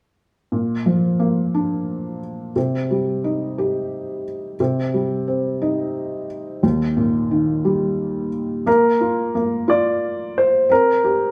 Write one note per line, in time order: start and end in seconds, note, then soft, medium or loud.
0.52 2.52 A#2 soft
0.86 2.18 F3 soft
1.20 2.51 A#3 soft
1.54 2.53 D4 soft
2.56 4.55 C3 soft
2.91 4.22 G3 soft
3.24 4.56 D#4 soft
3.58 4.57 G4 soft
4.60 6.59 C3 soft
4.94 6.25 G3 soft
5.28 6.59 C4 soft
5.62 6.60 D#4 soft
6.63 8.63 D#2 soft
6.97 8.29 A#2 soft
7.31 8.63 D#3 soft
7.65 8.64 G3 soft
8.66 9.33 A#3 soft
8.66 9.72 A#4 medium
9.01 9.66 F4 soft
9.35 10.66 A#3 soft
9.68 10.67 F4 soft
9.68 10.39 D5 medium
10.38 10.72 C5 medium
10.69 11.31 C4 medium
10.69 11.31 A#4 medium
11.04 11.31 G4 soft